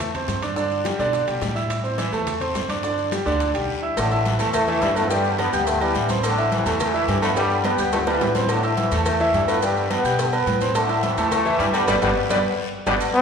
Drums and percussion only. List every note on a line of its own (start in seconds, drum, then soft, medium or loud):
0.00 high bongo medium
0.00 high conga soft
0.00 low conga medium
0.00 high timbale medium
0.00 long guiro medium
0.00 maracas medium
0.15 high conga soft
0.15 low conga medium
0.15 high timbale medium
0.15 maracas soft
0.28 high bongo medium
0.28 low bongo medium
0.28 high conga medium
0.28 high timbale medium
0.28 short guiro medium
0.28 maracas medium
0.42 high conga medium
0.42 high timbale medium
0.42 short guiro medium
0.42 maracas soft
0.56 high bongo medium
0.56 high conga soft
0.56 long guiro medium
0.56 maracas medium
0.71 high bongo soft
0.71 high conga soft
0.71 maracas soft
0.85 high bongo medium
0.85 high conga medium
0.85 high timbale loud
0.85 short guiro medium
0.85 maracas medium
0.99 high bongo soft
0.99 high conga soft
0.99 short guiro medium
0.99 maracas soft
1.13 high bongo medium
1.13 high conga soft
1.13 high timbale medium
1.13 long guiro medium
1.13 maracas medium
1.28 high conga soft
1.28 high timbale medium
1.28 maracas soft
1.42 high bongo medium
1.42 low bongo medium
1.42 high conga medium
1.42 high timbale medium
1.42 short guiro medium
1.42 maracas medium
1.56 high bongo soft
1.56 high conga medium
1.56 short guiro medium
1.56 maracas soft
1.70 high bongo medium
1.70 high conga soft
1.70 high timbale loud
1.70 long guiro medium
1.70 maracas medium
1.85 high conga soft
1.85 maracas soft
1.98 high bongo medium
1.98 high conga loud
1.98 high timbale medium
1.98 short guiro medium
1.98 maracas medium
2.13 high conga soft
2.13 short guiro medium
2.13 maracas soft
2.27 high bongo medium
2.27 high conga soft
2.27 low conga medium
2.27 high timbale medium
2.27 long guiro medium
2.27 maracas medium
2.41 high conga soft
2.41 low conga medium
2.41 high timbale medium
2.41 maracas soft
2.55 high bongo medium
2.55 low bongo medium
2.55 high conga medium
2.55 high timbale medium
2.55 low timbale medium
2.55 short guiro medium
2.55 maracas medium
2.69 high conga medium
2.69 high timbale medium
2.69 short guiro medium
2.69 maracas soft
2.83 high bongo medium
2.83 high conga soft
2.83 long guiro medium
2.83 maracas medium
2.98 high bongo soft
2.98 high conga soft
2.98 maracas soft
3.12 high bongo medium
3.12 high conga medium
3.12 high timbale medium
3.12 short guiro medium
3.12 maracas medium
3.26 high bongo soft
3.26 high conga soft
3.26 short guiro medium
3.26 maracas soft
3.40 high bongo medium
3.40 high conga soft
3.40 high timbale medium
3.40 long guiro medium
3.40 maracas medium
3.55 high conga soft
3.55 high timbale loud
3.55 maracas soft
3.97 cowbell loud
3.97 high conga soft
3.97 low agogo loud
3.97 long guiro medium
3.97 maracas medium
4.12 high conga soft
4.12 low agogo medium
4.12 maracas soft
4.25 cowbell medium
4.25 high conga loud
4.25 short guiro medium
4.25 maracas soft
4.39 cowbell medium
4.39 high conga soft
4.39 low agogo medium
4.39 short guiro medium
4.39 maracas medium
4.54 cowbell loud
4.54 high conga soft
4.54 low conga medium
4.54 low agogo loud
4.54 long guiro medium
4.54 maracas medium
4.68 high conga soft
4.68 maracas soft
4.82 cowbell medium
4.82 high conga medium
4.82 low timbale medium
4.82 low agogo medium
4.82 short guiro medium
4.82 maracas soft
4.96 high conga medium
4.96 low agogo loud
4.96 short guiro medium
4.96 maracas medium
5.10 cowbell loud
5.10 high conga soft
5.10 long guiro medium
5.10 maracas medium
5.25 maracas soft
5.39 cowbell medium
5.39 high conga loud
5.39 low agogo loud
5.39 short guiro medium
5.39 maracas soft
5.53 high conga soft
5.53 short guiro medium
5.53 maracas medium
5.67 cowbell loud
5.67 high conga soft
5.67 low agogo medium
5.67 long guiro medium
5.67 maracas loud
5.81 high conga soft
5.81 low agogo loud
5.81 maracas soft
5.95 cowbell medium
5.95 high conga medium
5.95 low agogo medium
5.95 short guiro medium
5.95 maracas soft
6.09 cowbell medium
6.09 high conga medium
6.09 short guiro medium
6.09 maracas medium
6.23 cowbell loud
6.23 low agogo loud
6.23 long guiro medium
6.23 maracas loud
6.37 low agogo medium
6.37 maracas soft
6.52 cowbell medium
6.52 high conga loud
6.52 short guiro medium
6.52 maracas soft
6.66 cowbell medium
6.66 high conga soft
6.66 low agogo medium
6.66 short guiro medium
6.66 maracas medium
6.80 cowbell loud
6.80 high conga soft
6.80 low conga medium
6.80 low agogo loud
6.80 long guiro medium
6.80 maracas medium
6.95 high conga soft
6.95 maracas soft
7.09 cowbell medium
7.09 high conga medium
7.09 low timbale medium
7.09 low agogo medium
7.09 short guiro medium
7.09 maracas soft
7.22 high conga medium
7.22 low agogo loud
7.22 short guiro medium
7.22 maracas medium
7.36 cowbell loud
7.36 high conga soft
7.36 high timbale loud
7.36 maracas medium
7.51 high conga soft
7.51 maracas soft
7.64 cowbell medium
7.64 high conga loud
7.64 high timbale medium
7.64 low agogo loud
7.64 short guiro medium
7.64 maracas soft
7.78 high conga soft
7.78 short guiro medium
7.78 maracas medium
7.92 cowbell loud
7.92 high conga soft
7.92 low timbale loud
7.92 low agogo medium
7.92 maracas medium
8.07 high bongo loud
8.07 low timbale medium
8.07 low agogo loud
8.07 maracas soft
8.21 cowbell medium
8.21 low bongo loud
8.21 high conga medium
8.21 low timbale medium
8.21 low agogo medium
8.21 short guiro medium
8.21 maracas soft
8.35 cowbell medium
8.35 low bongo medium
8.35 high conga medium
8.35 low timbale medium
8.35 short guiro medium
8.35 maracas medium
8.49 cowbell loud
8.49 high conga soft
8.49 low agogo loud
8.49 long guiro medium
8.49 maracas medium
8.63 high conga soft
8.63 low agogo medium
8.63 maracas soft
8.77 cowbell medium
8.77 high conga loud
8.77 short guiro medium
8.77 maracas soft
8.91 cowbell medium
8.91 high conga soft
8.91 low agogo medium
8.91 short guiro medium
8.91 maracas medium
9.06 cowbell loud
9.06 high conga soft
9.06 low conga medium
9.06 low agogo loud
9.06 long guiro medium
9.06 maracas medium
9.20 high conga soft
9.20 maracas soft
9.34 cowbell medium
9.34 high conga medium
9.34 low agogo medium
9.34 short guiro medium
9.34 maracas soft
9.48 low agogo loud
9.48 short guiro medium
9.48 maracas medium
9.62 cowbell loud
9.62 high conga soft
9.62 long guiro medium
9.62 maracas medium
9.76 high conga soft
9.76 maracas soft
9.91 cowbell medium
9.91 high conga loud
9.91 low agogo loud
9.91 short guiro medium
9.91 maracas soft
10.05 short guiro medium
10.05 maracas medium
10.19 cowbell loud
10.19 high conga soft
10.19 low agogo medium
10.19 long guiro medium
10.19 maracas medium
10.33 high conga soft
10.33 low agogo loud
10.33 maracas soft
10.47 cowbell medium
10.47 high conga medium
10.47 low timbale medium
10.47 low agogo medium
10.47 short guiro medium
10.47 maracas soft
10.61 cowbell medium
10.61 high conga medium
10.61 short guiro medium
10.61 maracas medium
10.75 cowbell loud
10.75 low agogo loud
10.75 long guiro medium
10.75 maracas medium
10.89 high conga soft
10.89 low agogo medium
10.89 maracas soft
11.03 cowbell medium
11.03 high conga loud
11.03 short guiro medium
11.03 maracas soft
11.17 cowbell medium
11.17 high conga soft
11.17 low agogo medium
11.17 short guiro medium
11.17 maracas medium
11.32 cowbell loud
11.32 high conga soft
11.32 low conga medium
11.32 low agogo loud
11.32 long guiro medium
11.32 maracas medium
11.45 high conga soft
11.45 low conga medium
11.45 maracas soft
11.60 cowbell medium
11.60 high conga medium
11.60 low agogo medium
11.60 short guiro medium
11.60 maracas soft
11.74 low agogo loud
11.74 short guiro medium
11.74 maracas medium
11.87 cowbell loud
11.87 high conga loud
11.87 high timbale loud
11.87 long guiro loud
11.87 maracas loud
12.02 cowbell loud
12.02 high conga loud
12.02 high timbale loud
12.02 long guiro loud
12.02 maracas medium
12.30 cowbell loud
12.30 high conga loud
12.30 high timbale loud
12.30 long guiro medium
12.30 maracas loud
12.87 cowbell loud
12.87 high conga loud
12.87 high timbale loud
12.87 long guiro loud
12.87 maracas medium
13.01 high conga soft
13.01 low agogo loud
13.01 maracas medium
13.15 high conga soft
13.15 low agogo medium
13.15 maracas soft